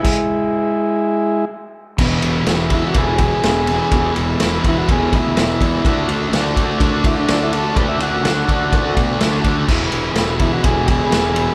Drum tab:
CC |x-------|x-------|--------|--------|
RD |--------|-xxxxxxx|xxxxxxxx|xxxxxxxx|
SD |--------|--o---o-|--o---o-|--o---o-|
BD |o-------|o--ooo--|o--ooo-o|o--ooo--|

CC |--------|x-------|
RD |xxxxxxxx|-xxxxxxx|
SD |--o---o-|--o---o-|
BD |o--ooo-o|o--ooo--|